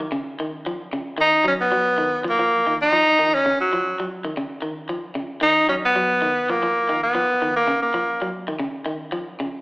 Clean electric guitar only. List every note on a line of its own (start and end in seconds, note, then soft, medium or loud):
0.00 0.08 D#3 medium
0.12 0.30 C#3 medium
0.40 0.57 D#3 medium
0.66 0.84 F3 medium
0.93 1.10 C#3 medium
1.18 1.36 D#3 medium
1.44 1.62 F#3 medium
1.72 1.89 F#3 medium
1.98 2.15 D#3 medium
2.24 2.34 F3 medium
2.39 2.56 F3 medium
2.67 2.84 D#3 medium
2.93 3.10 F3 medium
3.19 3.36 D#3 medium
3.46 3.63 C#3 medium
3.73 3.90 F3 medium
4.00 4.17 F#3 medium
4.25 4.33 D#3 medium
4.37 4.55 C#3 medium
4.62 4.80 D#3 medium
4.89 5.07 F3 medium
5.15 5.33 C#3 medium
5.41 5.59 D#3 medium
5.69 5.86 F#3 medium
5.96 6.13 F#3 medium
6.22 6.39 D#3 medium
6.50 6.58 F3 medium
6.63 6.80 F3 medium
6.89 7.07 D#3 medium
7.15 7.33 F3 medium
7.42 7.59 D#3 medium
7.68 7.85 C#3 medium
7.94 8.12 F3 medium
8.22 8.39 F#3 medium
8.48 8.56 D#3 medium
8.60 8.77 C#3 medium
8.86 9.04 D#3 medium
9.12 9.30 F3 medium
9.40 9.57 C#3 medium